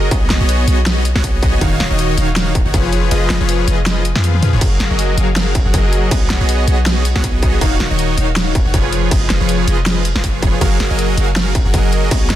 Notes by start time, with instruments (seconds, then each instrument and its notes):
0.11 808-style bass B1, analog polysynth B3 F#4 G#4 C#5 D#5, kick, closed hi-hat
0.30 808-style bass B1, analog polysynth B3 F#4 G#4 C#5 D#5, snare, closed hi-hat
0.40 808-style bass B1, analog polysynth B3 F#4 G#4 C#5 D#5
0.49 closed hi-hat
0.68 808-style bass B1, analog polysynth B3 F#4 G#4 C#5 D#5, closed hi-hat
0.86 snare, closed hi-hat
1.05 closed hi-hat
1.15 808-style bass B1, analog polysynth B3 F#4 G#4 C#5 F#5, snare
1.24 808-style bass B1, analog polysynth B3 F#4 G#4 C#5 D#5, kick, closed hi-hat
1.43 kick, closed hi-hat
1.61 808-style bass D#1, analog polysynth D#3 D#4 F#4 C#5 F5, kick, closed hi-hat
1.80 808-style bass D#1, analog polysynth D#3 D#4 F#4 C#5 F5, snare, closed hi-hat
1.90 808-style bass D#1, analog polysynth D#3 D#4 F#4 C#5 D#5
1.99 closed hi-hat
2.18 808-style bass D#1, analog polysynth D#3 D#4 F#4 C#5 F5, closed hi-hat
2.36 snare, closed hi-hat
2.55 kick, closed hi-hat
2.65 808-style bass D#1, analog polysynth D#3 D#4 F#4 C#5 F#5
2.74 808-style bass F1, analog polysynth F3 F4 G#4 B4 C#5, kick, closed hi-hat
2.93 closed hi-hat
3.11 808-style bass F1, analog polysynth F3 F4 G#4 B4 D#5, closed hi-hat
3.30 808-style bass F1, analog polysynth F3 F4 G#4 B4 D#5, snare, closed hi-hat
3.41 808-style bass F1, analog polysynth F3 F4 G#4 B4 C#5
3.49 closed hi-hat
3.68 808-style bass F1, analog polysynth F3 F4 G#4 B4 D#5, closed hi-hat
3.86 snare, closed hi-hat
4.05 closed hi-hat
4.16 808-style bass F2, analog polysynth F3 F4 G#4 B4 F5, snare
4.24 closed hi-hat, high tom
4.34 high tom
4.42 808-style bass F2, analog polysynth F3 F4 G#4 B4 F5, closed hi-hat, mid tom
4.53 808-style bass F1, analog polysynth F3 F4 G#4 B4 C#5, mid tom
4.61 808-style bass F#1, analog polysynth F#3 F#4 G#4 A#4 F5, kick, closed hi-hat, crash
4.80 808-style bass F#1, analog polysynth F#3 F#4 G#4 A#4 F5, snare, closed hi-hat
4.90 808-style bass F#1, analog polysynth F#3 F#4 G#4 A#4 D#5
4.99 closed hi-hat
5.18 808-style bass F#1, analog polysynth F#3 F#4 G#4 A#4 F5, closed hi-hat
5.36 snare, closed hi-hat, crash
5.55 kick, closed hi-hat
5.66 808-style bass F#1, analog polysynth F#3 F#4 G#4 A#4 F#5
5.74 808-style bass F#1, analog polysynth F#3 F#4 G#4 A#4 D#5, kick, closed hi-hat
5.93 closed hi-hat
6.11 808-style bass B1, analog polysynth B3 F#4 G#4 C#5 D#5, kick, closed hi-hat, crash
6.30 808-style bass B1, analog polysynth B3 F#4 G#4 C#5 D#5, snare, closed hi-hat
6.41 808-style bass B1, analog polysynth B3 F#4 G#4 C#5 D#5
6.49 closed hi-hat
6.68 808-style bass B1, analog polysynth B3 F#4 G#4 C#5 D#5, closed hi-hat
6.86 snare, closed hi-hat, crash
7.05 closed hi-hat
7.15 808-style bass B1, analog polysynth B3 F#4 G#4 C#5 F#5, snare
7.24 808-style bass B1, analog polysynth B3 F#4 G#4 C#5 D#5, kick, closed hi-hat
7.43 kick, closed hi-hat
7.61 808-style bass D#1, analog polysynth D#3 D#4 F#4 C#5 F5, kick, closed hi-hat, crash
7.80 808-style bass D#1, analog polysynth D#3 D#4 F#4 C#5 F5, snare, closed hi-hat
7.91 808-style bass D#1, analog polysynth D#3 D#4 F#4 C#5 D#5
7.99 closed hi-hat
8.18 808-style bass D#1, analog polysynth D#3 D#4 F#4 C#5 F5, closed hi-hat
8.36 snare, closed hi-hat, crash
8.55 kick, closed hi-hat
8.66 808-style bass D#1, analog polysynth D#3 D#4 F#4 C#5 F#5
8.74 808-style bass F1, analog polysynth F3 F4 G#4 B4 C#5, kick, closed hi-hat
8.93 closed hi-hat
9.11 808-style bass F1, analog polysynth F3 F4 G#4 B4 D#5, kick, closed hi-hat, crash
9.30 808-style bass F1, analog polysynth F3 F4 G#4 B4 D#5, snare, closed hi-hat
9.41 808-style bass F1, analog polysynth F3 F4 G#4 B4 C#5
9.49 closed hi-hat
9.67 808-style bass F1, analog polysynth F3 F4 G#4 B4 D#5, closed hi-hat
9.86 snare, closed hi-hat, crash
10.05 closed hi-hat
10.15 808-style bass F1, analog polysynth F3 F4 G#4 B4 F5, snare
10.24 808-style bass F1, analog polysynth F3 F4 G#4 B4 C#5, kick, closed hi-hat
10.43 kick, closed hi-hat
10.61 808-style bass F#1, analog polysynth F#3 F#4 G#4 A#4 F5, kick, closed hi-hat, crash
10.80 808-style bass F#1, analog polysynth F#3 F#4 G#4 A#4 F5, snare, closed hi-hat
10.90 808-style bass F#1, analog polysynth F#3 F#4 G#4 A#4 D#5
10.99 closed hi-hat
11.17 808-style bass F#1, analog polysynth F#3 F#4 G#4 A#4 F5, closed hi-hat
11.36 snare, closed hi-hat, crash
11.55 kick, closed hi-hat
11.65 808-style bass F#1, analog polysynth F#3 F#4 G#4 A#4 F#5
11.74 808-style bass F#1, analog polysynth F#3 F#4 G#4 A#4 D#5, kick, closed hi-hat
11.92 closed hi-hat
12.11 808-style bass B1, analog polysynth B3 F#4 G#4 C#5 D#5, kick, closed hi-hat, crash
12.30 808-style bass B1, analog polysynth B3 F#4 G#4 C#5 D#5, snare, closed hi-hat